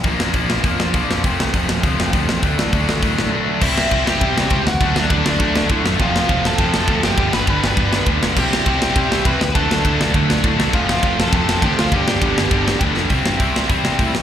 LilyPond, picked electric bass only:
\new Staff \with { instrumentName = "Picked electric bass" } { \clef bass \time 4/4 \key c \major \tempo 4 = 202 bes,,8 f,8 bes,,8 bes,,8 f,8 f,8 bes,,8 f,8 | f,,8 c,8 f,,4 d,8 f,,8 d,8 e,8 | d,8 a,8 d,8 d,8 a,8 a,8 r4 | c,4 c,4 c8 c,8 cis,8 d,8 |
d,8 d,8 d,8 d,8 d,4 a,8 fis,8 | f,,4 f,,4 f,8 f,,8 d,8 fis,,8 | g,,8 g,,8 g,,8 g,,8 g,,4 d,8 f,,8 | c,4 c,4 c8 c,8 c,8 d,8 |
d,8 d,8 d,8 d,8 d,4 a,8 c,8 | f,,4 f,,4 f,8 f,,8 d,8 d,8 | g,,8 g,,8 g,,8 g,,8 g,,4 d,8 f,,8 | c,8 g,8 c,4 a,,8 c,8 a,8 bes,,8 | }